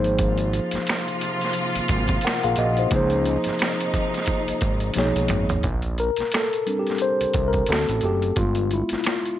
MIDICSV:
0, 0, Header, 1, 5, 480
1, 0, Start_track
1, 0, Tempo, 681818
1, 132, Time_signature, 4, 2, 24, 8
1, 6612, End_track
2, 0, Start_track
2, 0, Title_t, "Tine electric piano"
2, 0, Program_c, 0, 4
2, 0, Note_on_c, 0, 53, 68
2, 0, Note_on_c, 0, 58, 63
2, 0, Note_on_c, 0, 63, 67
2, 0, Note_on_c, 0, 68, 61
2, 0, Note_on_c, 0, 72, 79
2, 24, Control_c, 0, 64, 127
2, 1540, Note_off_c, 0, 53, 0
2, 1546, Note_off_c, 0, 58, 0
2, 1550, Note_off_c, 0, 63, 0
2, 1554, Note_off_c, 0, 68, 0
2, 1582, Note_on_c, 0, 78, 59
2, 1583, Note_off_c, 0, 72, 0
2, 1585, Note_on_c, 0, 70, 52
2, 1710, Note_off_c, 0, 78, 0
2, 1712, Note_off_c, 0, 70, 0
2, 1718, Note_on_c, 0, 77, 73
2, 1723, Note_on_c, 0, 68, 61
2, 1810, Note_off_c, 0, 77, 0
2, 1813, Note_off_c, 0, 68, 0
2, 1820, Note_on_c, 0, 75, 69
2, 1825, Note_on_c, 0, 66, 56
2, 1949, Note_off_c, 0, 75, 0
2, 1951, Note_off_c, 0, 66, 0
2, 1962, Note_on_c, 0, 72, 57
2, 1965, Note_on_c, 0, 63, 49
2, 2044, Note_on_c, 0, 53, 68
2, 2054, Note_on_c, 0, 58, 68
2, 2057, Note_off_c, 0, 63, 0
2, 2061, Control_c, 0, 64, 0
2, 2065, Note_on_c, 0, 63, 66
2, 2073, Note_on_c, 0, 68, 68
2, 2076, Note_off_c, 0, 72, 0
2, 2084, Note_on_c, 0, 72, 82
2, 2175, Control_c, 0, 64, 127
2, 3459, Note_off_c, 0, 53, 0
2, 3465, Note_off_c, 0, 58, 0
2, 3470, Note_off_c, 0, 63, 0
2, 3474, Note_off_c, 0, 68, 0
2, 3480, Note_off_c, 0, 72, 0
2, 3490, Note_on_c, 0, 53, 64
2, 3495, Note_on_c, 0, 58, 64
2, 3501, Control_c, 0, 64, 0
2, 3501, Note_on_c, 0, 63, 62
2, 3503, Note_on_c, 0, 68, 65
2, 3510, Note_on_c, 0, 73, 75
2, 3619, Control_c, 0, 64, 127
2, 3971, Note_off_c, 0, 53, 0
2, 3974, Note_off_c, 0, 58, 0
2, 3976, Note_off_c, 0, 63, 0
2, 3977, Note_off_c, 0, 68, 0
2, 3981, Note_off_c, 0, 73, 0
2, 3981, Control_c, 0, 64, 0
2, 4089, Control_c, 0, 64, 127
2, 4222, Note_on_c, 0, 70, 93
2, 4464, Note_off_c, 0, 70, 0
2, 4464, Note_on_c, 0, 69, 84
2, 4692, Note_on_c, 0, 55, 50
2, 4697, Note_on_c, 0, 60, 46
2, 4699, Note_on_c, 0, 62, 54
2, 4782, Note_on_c, 0, 67, 80
2, 4787, Note_off_c, 0, 69, 0
2, 4941, Note_on_c, 0, 72, 91
2, 4942, Note_off_c, 0, 67, 0
2, 5264, Note_on_c, 0, 70, 88
2, 5266, Note_off_c, 0, 72, 0
2, 5384, Note_off_c, 0, 55, 0
2, 5386, Note_off_c, 0, 60, 0
2, 5387, Note_off_c, 0, 62, 0
2, 5413, Note_on_c, 0, 57, 47
2, 5417, Note_on_c, 0, 60, 42
2, 5420, Note_on_c, 0, 66, 54
2, 5421, Control_c, 0, 64, 0
2, 5423, Note_off_c, 0, 70, 0
2, 5425, Note_on_c, 0, 69, 84
2, 5539, Control_c, 0, 64, 127
2, 5642, Note_off_c, 0, 69, 0
2, 5667, Note_on_c, 0, 67, 87
2, 5747, Note_off_c, 0, 57, 0
2, 5749, Note_off_c, 0, 60, 0
2, 5750, Note_off_c, 0, 66, 0
2, 5896, Note_on_c, 0, 56, 57
2, 5899, Note_on_c, 0, 59, 53
2, 5900, Control_c, 0, 64, 0
2, 5904, Note_on_c, 0, 65, 91
2, 5906, Note_off_c, 0, 67, 0
2, 6005, Control_c, 0, 64, 127
2, 6148, Note_off_c, 0, 65, 0
2, 6148, Note_on_c, 0, 64, 79
2, 6330, Note_off_c, 0, 64, 0
2, 6339, Note_on_c, 0, 64, 55
2, 6376, Note_off_c, 0, 64, 0
2, 6388, Note_on_c, 0, 65, 75
2, 6585, Note_off_c, 0, 56, 0
2, 6587, Note_off_c, 0, 59, 0
2, 6612, Note_off_c, 0, 65, 0
2, 6612, End_track
3, 0, Start_track
3, 0, Title_t, "String section"
3, 0, Program_c, 1, 48
3, 135, Note_on_c, 1, 58, 72
3, 136, Note_on_c, 1, 48, 73
3, 136, Note_on_c, 1, 53, 68
3, 136, Note_on_c, 1, 65, 82
3, 2035, Note_off_c, 1, 48, 0
3, 2035, Note_off_c, 1, 53, 0
3, 2035, Note_off_c, 1, 65, 0
3, 2053, Note_on_c, 1, 53, 67
3, 2053, Note_on_c, 1, 63, 84
3, 2055, Note_on_c, 1, 48, 75
3, 3465, Note_off_c, 1, 58, 0
3, 3478, Note_off_c, 1, 53, 0
3, 3478, Note_off_c, 1, 63, 0
3, 3479, Note_off_c, 1, 48, 0
3, 3492, Note_on_c, 1, 56, 63
3, 3498, Note_on_c, 1, 47, 60
3, 3498, Note_on_c, 1, 63, 73
3, 3499, Note_on_c, 1, 49, 65
3, 3967, Note_off_c, 1, 56, 0
3, 3970, Note_off_c, 1, 47, 0
3, 3970, Note_off_c, 1, 49, 0
3, 3970, Note_off_c, 1, 63, 0
3, 6612, End_track
4, 0, Start_track
4, 0, Title_t, "Analog synth bass"
4, 0, Program_c, 2, 38
4, 0, Note_on_c, 2, 32, 114
4, 427, Note_off_c, 2, 32, 0
4, 515, Note_on_c, 2, 32, 49
4, 554, Note_off_c, 2, 32, 0
4, 1238, Note_on_c, 2, 32, 49
4, 1277, Note_off_c, 2, 32, 0
4, 1336, Note_on_c, 2, 32, 98
4, 1540, Note_off_c, 2, 32, 0
4, 1720, Note_on_c, 2, 34, 89
4, 1802, Note_off_c, 2, 34, 0
4, 1816, Note_on_c, 2, 34, 107
4, 2020, Note_off_c, 2, 34, 0
4, 2054, Note_on_c, 2, 37, 120
4, 2379, Note_off_c, 2, 37, 0
4, 2439, Note_on_c, 2, 32, 50
4, 2477, Note_off_c, 2, 32, 0
4, 3153, Note_on_c, 2, 32, 48
4, 3193, Note_off_c, 2, 32, 0
4, 3252, Note_on_c, 2, 32, 96
4, 3458, Note_off_c, 2, 32, 0
4, 3495, Note_on_c, 2, 35, 96
4, 3614, Note_off_c, 2, 35, 0
4, 3632, Note_on_c, 2, 35, 89
4, 3718, Note_off_c, 2, 35, 0
4, 3728, Note_on_c, 2, 32, 109
4, 3936, Note_off_c, 2, 32, 0
4, 3974, Note_on_c, 2, 34, 117
4, 4300, Note_off_c, 2, 34, 0
4, 4351, Note_on_c, 2, 36, 50
4, 4391, Note_off_c, 2, 36, 0
4, 5076, Note_on_c, 2, 36, 42
4, 5115, Note_off_c, 2, 36, 0
4, 5174, Note_on_c, 2, 36, 95
4, 5379, Note_off_c, 2, 36, 0
4, 5413, Note_on_c, 2, 38, 86
4, 5533, Note_off_c, 2, 38, 0
4, 5557, Note_on_c, 2, 33, 88
4, 5641, Note_off_c, 2, 33, 0
4, 5654, Note_on_c, 2, 30, 92
4, 5859, Note_off_c, 2, 30, 0
4, 5894, Note_on_c, 2, 31, 109
4, 6219, Note_off_c, 2, 31, 0
4, 6275, Note_on_c, 2, 31, 49
4, 6314, Note_off_c, 2, 31, 0
4, 6612, End_track
5, 0, Start_track
5, 0, Title_t, "Drums"
5, 30, Note_on_c, 9, 42, 40
5, 101, Note_off_c, 9, 42, 0
5, 131, Note_on_c, 9, 42, 82
5, 134, Note_on_c, 9, 36, 113
5, 201, Note_off_c, 9, 42, 0
5, 204, Note_off_c, 9, 36, 0
5, 264, Note_on_c, 9, 42, 48
5, 335, Note_off_c, 9, 42, 0
5, 376, Note_on_c, 9, 42, 59
5, 446, Note_off_c, 9, 42, 0
5, 502, Note_on_c, 9, 42, 57
5, 529, Note_on_c, 9, 38, 35
5, 573, Note_off_c, 9, 42, 0
5, 600, Note_off_c, 9, 38, 0
5, 611, Note_on_c, 9, 42, 80
5, 630, Note_on_c, 9, 26, 82
5, 632, Note_on_c, 9, 38, 98
5, 681, Note_off_c, 9, 42, 0
5, 700, Note_off_c, 9, 26, 0
5, 703, Note_off_c, 9, 38, 0
5, 760, Note_on_c, 9, 42, 48
5, 830, Note_off_c, 9, 42, 0
5, 854, Note_on_c, 9, 42, 62
5, 925, Note_off_c, 9, 42, 0
5, 995, Note_on_c, 9, 42, 41
5, 1018, Note_on_c, 9, 38, 28
5, 1066, Note_off_c, 9, 42, 0
5, 1079, Note_on_c, 9, 42, 76
5, 1088, Note_off_c, 9, 38, 0
5, 1149, Note_off_c, 9, 42, 0
5, 1235, Note_on_c, 9, 42, 51
5, 1306, Note_off_c, 9, 42, 0
5, 1326, Note_on_c, 9, 42, 76
5, 1333, Note_on_c, 9, 36, 80
5, 1396, Note_off_c, 9, 42, 0
5, 1403, Note_off_c, 9, 36, 0
5, 1462, Note_on_c, 9, 42, 52
5, 1471, Note_on_c, 9, 36, 93
5, 1533, Note_off_c, 9, 42, 0
5, 1541, Note_off_c, 9, 36, 0
5, 1557, Note_on_c, 9, 42, 70
5, 1598, Note_on_c, 9, 26, 84
5, 1600, Note_on_c, 9, 38, 107
5, 1627, Note_off_c, 9, 42, 0
5, 1668, Note_off_c, 9, 26, 0
5, 1671, Note_off_c, 9, 38, 0
5, 1713, Note_on_c, 9, 42, 54
5, 1783, Note_off_c, 9, 42, 0
5, 1801, Note_on_c, 9, 42, 69
5, 1871, Note_off_c, 9, 42, 0
5, 1949, Note_on_c, 9, 42, 43
5, 2019, Note_off_c, 9, 42, 0
5, 2047, Note_on_c, 9, 42, 82
5, 2053, Note_on_c, 9, 36, 115
5, 2118, Note_off_c, 9, 42, 0
5, 2123, Note_off_c, 9, 36, 0
5, 2182, Note_on_c, 9, 42, 42
5, 2252, Note_off_c, 9, 42, 0
5, 2291, Note_on_c, 9, 42, 62
5, 2362, Note_off_c, 9, 42, 0
5, 2421, Note_on_c, 9, 42, 55
5, 2448, Note_on_c, 9, 38, 35
5, 2492, Note_off_c, 9, 42, 0
5, 2518, Note_off_c, 9, 38, 0
5, 2529, Note_on_c, 9, 42, 79
5, 2548, Note_on_c, 9, 26, 81
5, 2550, Note_on_c, 9, 38, 97
5, 2599, Note_off_c, 9, 42, 0
5, 2618, Note_off_c, 9, 26, 0
5, 2621, Note_off_c, 9, 38, 0
5, 2679, Note_on_c, 9, 42, 52
5, 2749, Note_off_c, 9, 42, 0
5, 2772, Note_on_c, 9, 36, 84
5, 2775, Note_on_c, 9, 42, 62
5, 2843, Note_off_c, 9, 36, 0
5, 2845, Note_off_c, 9, 42, 0
5, 2916, Note_on_c, 9, 42, 39
5, 2939, Note_on_c, 9, 38, 34
5, 2986, Note_off_c, 9, 42, 0
5, 2999, Note_on_c, 9, 42, 70
5, 3009, Note_off_c, 9, 38, 0
5, 3010, Note_on_c, 9, 36, 82
5, 3069, Note_off_c, 9, 42, 0
5, 3081, Note_off_c, 9, 36, 0
5, 3154, Note_on_c, 9, 42, 51
5, 3224, Note_off_c, 9, 42, 0
5, 3244, Note_on_c, 9, 42, 67
5, 3251, Note_on_c, 9, 36, 83
5, 3315, Note_off_c, 9, 42, 0
5, 3322, Note_off_c, 9, 36, 0
5, 3381, Note_on_c, 9, 42, 45
5, 3451, Note_off_c, 9, 42, 0
5, 3475, Note_on_c, 9, 42, 77
5, 3509, Note_on_c, 9, 38, 58
5, 3545, Note_off_c, 9, 42, 0
5, 3580, Note_off_c, 9, 38, 0
5, 3633, Note_on_c, 9, 42, 50
5, 3703, Note_off_c, 9, 42, 0
5, 3720, Note_on_c, 9, 42, 68
5, 3731, Note_on_c, 9, 45, 78
5, 3790, Note_off_c, 9, 42, 0
5, 3801, Note_off_c, 9, 45, 0
5, 3867, Note_on_c, 9, 42, 43
5, 3871, Note_on_c, 9, 43, 94
5, 3938, Note_off_c, 9, 42, 0
5, 3941, Note_off_c, 9, 43, 0
5, 3965, Note_on_c, 9, 42, 73
5, 3970, Note_on_c, 9, 36, 114
5, 4035, Note_off_c, 9, 42, 0
5, 4041, Note_off_c, 9, 36, 0
5, 4098, Note_on_c, 9, 42, 39
5, 4169, Note_off_c, 9, 42, 0
5, 4210, Note_on_c, 9, 42, 57
5, 4280, Note_off_c, 9, 42, 0
5, 4340, Note_on_c, 9, 42, 55
5, 4367, Note_on_c, 9, 38, 31
5, 4410, Note_off_c, 9, 42, 0
5, 4437, Note_off_c, 9, 38, 0
5, 4447, Note_on_c, 9, 42, 75
5, 4466, Note_on_c, 9, 26, 81
5, 4468, Note_on_c, 9, 38, 94
5, 4517, Note_off_c, 9, 42, 0
5, 4536, Note_off_c, 9, 26, 0
5, 4539, Note_off_c, 9, 38, 0
5, 4597, Note_on_c, 9, 42, 46
5, 4667, Note_off_c, 9, 42, 0
5, 4694, Note_on_c, 9, 42, 62
5, 4764, Note_off_c, 9, 42, 0
5, 4834, Note_on_c, 9, 42, 38
5, 4857, Note_on_c, 9, 38, 28
5, 4904, Note_off_c, 9, 42, 0
5, 4916, Note_on_c, 9, 42, 73
5, 4927, Note_off_c, 9, 38, 0
5, 4987, Note_off_c, 9, 42, 0
5, 5074, Note_on_c, 9, 42, 49
5, 5145, Note_off_c, 9, 42, 0
5, 5164, Note_on_c, 9, 42, 71
5, 5170, Note_on_c, 9, 36, 91
5, 5234, Note_off_c, 9, 42, 0
5, 5241, Note_off_c, 9, 36, 0
5, 5301, Note_on_c, 9, 42, 48
5, 5308, Note_on_c, 9, 36, 87
5, 5371, Note_off_c, 9, 42, 0
5, 5379, Note_off_c, 9, 36, 0
5, 5396, Note_on_c, 9, 42, 74
5, 5436, Note_on_c, 9, 26, 73
5, 5439, Note_on_c, 9, 38, 101
5, 5466, Note_off_c, 9, 42, 0
5, 5507, Note_off_c, 9, 26, 0
5, 5509, Note_off_c, 9, 38, 0
5, 5552, Note_on_c, 9, 42, 51
5, 5622, Note_off_c, 9, 42, 0
5, 5638, Note_on_c, 9, 42, 59
5, 5709, Note_off_c, 9, 42, 0
5, 5788, Note_on_c, 9, 42, 40
5, 5859, Note_off_c, 9, 42, 0
5, 5886, Note_on_c, 9, 42, 83
5, 5890, Note_on_c, 9, 36, 109
5, 5956, Note_off_c, 9, 42, 0
5, 5961, Note_off_c, 9, 36, 0
5, 6018, Note_on_c, 9, 42, 47
5, 6089, Note_off_c, 9, 42, 0
5, 6130, Note_on_c, 9, 42, 55
5, 6200, Note_off_c, 9, 42, 0
5, 6259, Note_on_c, 9, 42, 56
5, 6286, Note_on_c, 9, 38, 36
5, 6329, Note_off_c, 9, 42, 0
5, 6356, Note_off_c, 9, 38, 0
5, 6363, Note_on_c, 9, 42, 75
5, 6382, Note_on_c, 9, 26, 80
5, 6385, Note_on_c, 9, 38, 97
5, 6433, Note_off_c, 9, 42, 0
5, 6452, Note_off_c, 9, 26, 0
5, 6455, Note_off_c, 9, 38, 0
5, 6515, Note_on_c, 9, 42, 49
5, 6586, Note_off_c, 9, 42, 0
5, 6612, End_track
0, 0, End_of_file